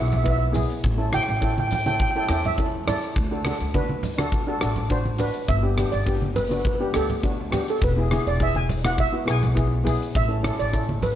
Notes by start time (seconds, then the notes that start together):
Already playing: B3 E4 F#4
0.00 B1 E5
0.08 E5
0.12 closed hi-hat, low conga
0.17 E5
0.24 B3 E4 B4 E5, kick, closed hi-hat
0.30 E5
0.38 E5
0.52 B3 E4 G#4, closed hi-hat, low conga
0.70 closed hi-hat
0.84 A1, kick, closed hi-hat
0.98 C#4 E4 A4
1.12 C#4 E4 F#4 G5, cross-stick, closed hi-hat, high conga
1.23 G5
1.28 A1 G5, closed hi-hat
1.37 G5
1.41 C#4 E4 A4 G5, kick, closed hi-hat
1.53 G5
1.58 G5, high conga
1.67 G5, closed hi-hat
1.72 G5, low conga
1.86 C#4 E4 A4 G5, closed hi-hat, high conga
1.95 G5
1.99 G5, kick, closed hi-hat
2.11 G5
2.15 C#4 E4 A4 G5
2.24 G5
2.29 E2 C#4 E4 A4 G5, cross-stick, closed hi-hat
2.44 E5, closed hi-hat, low conga
2.58 C#4 E4 A4, kick, closed hi-hat
2.87 C#4 E4 A4 D5, cross-stick, closed hi-hat, low conga
3.02 closed hi-hat
3.16 D2, kick, closed hi-hat
3.31 D4 F#4 A4
3.45 D4 F#4 A4, cross-stick, closed hi-hat, high conga
3.60 D2, closed hi-hat
3.74 D4 F#4 B4, kick, closed hi-hat, high conga
3.89 high conga
4.03 closed hi-hat, low conga
4.18 D4 F#4 A4, cross-stick, closed hi-hat, high conga
4.32 kick, closed hi-hat
4.47 D4 F#4 A4
4.61 A1 D4 F#4 A4, cross-stick, closed hi-hat
4.76 closed hi-hat, low conga
4.90 D4 F#4 C5, kick, closed hi-hat
5.05 high conga
5.18 D4 F#4 B4, closed hi-hat, low conga
5.34 closed hi-hat
5.48 G1 E5, kick, closed hi-hat
5.62 B3 D4 G4
5.77 B3 D4 G4, cross-stick, closed hi-hat, high conga
5.92 G1 D5, closed hi-hat
6.06 B3 D4 G4, kick, closed hi-hat
6.22 high conga
6.36 B4, closed hi-hat, low conga
6.44 B4
6.49 B3 D4 F#4 B4, closed hi-hat, high conga
6.59 B4
6.65 B4, kick, closed hi-hat
6.75 B4
6.80 B3 D4 G4 B4
6.93 D2 B3 D4 G4 A4, cross-stick, closed hi-hat
7.10 closed hi-hat, low conga
7.22 B3 D4 F#4, kick, closed hi-hat
7.52 B3 D4 G4, cross-stick, closed hi-hat, low conga
7.68 A4, closed hi-hat
7.82 E1 B4, kick, closed hi-hat
7.97 B3 E4 G#4
8.11 B3 E4 G#4, cross-stick, closed hi-hat, high conga
8.26 E1 D5, closed hi-hat
8.40 B3 E4 G#4 E5, kick, closed hi-hat
8.55 G#5, high conga
8.69 closed hi-hat, low conga
8.84 B3 E4 F#4 F#5, cross-stick, closed hi-hat, high conga
8.98 E5, kick, closed hi-hat
9.13 B3 E4 F#4
9.25 B1 B3 E4 G#4, cross-stick, closed hi-hat
9.30 G#5
9.43 closed hi-hat, low conga
9.54 B3 E4 G#4, kick, closed hi-hat
9.84 B3 E4 G#4, closed hi-hat, low conga
10.02 closed hi-hat
10.15 A1 E5, kick, closed hi-hat
10.28 C#4 E4 A4
10.43 C#4 E4 A4, cross-stick, closed hi-hat, high conga
10.59 A1 D5, closed hi-hat
10.73 C#4 E4 A4, kick, closed hi-hat
10.89 high conga
11.02 B4, closed hi-hat, low conga
11.11 B4